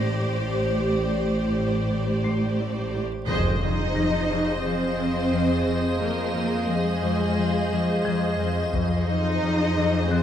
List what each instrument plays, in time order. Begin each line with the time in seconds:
Already playing: double bass section A1, harp A2, cello section A2, viola section G4, ambient pad G4 C5 D5, violin section C5 D5, grand piano A#6
0.21 harp A3
0.55 harp A2
0.90 harp A2
1.24 harp A2
1.57 harp A2
1.92 harp A2
2.24 harp A2, grand piano C6 C7
2.60 harp A2
2.94 harp A3
3.26 harp F2, double bass section F2, ambient pad G#4 D#5 F5, viola section G#4 C5, violin section D#5, taiko, impact
3.62 harp F2, cello section D#4, violin section D#5
3.95 harp F2, grand piano A#6
4.31 harp F2
4.63 harp F3, cello section C4, violin section C5
4.99 harp F2
5.33 harp F2
5.66 harp F2
6.00 harp F2, cello section A#3, violin section A#4
6.35 harp F2
6.68 harp F2, cello section G#3, violin section G#4
7.03 harp F2
7.38 harp F3
7.72 harp F2
8.05 harp F2, grand piano G#6
8.39 harp F2
8.72 harp F2, double bass section F2, viola section G#4 C5, ambient pad G#4 D#5 G#5, violin section D#5, taiko
9.07 harp F2, cello section D#4, violin section D#5
9.42 harp F2
9.77 harp F2
10.08 harp F3, cello section C4, violin section C5, grand piano F#6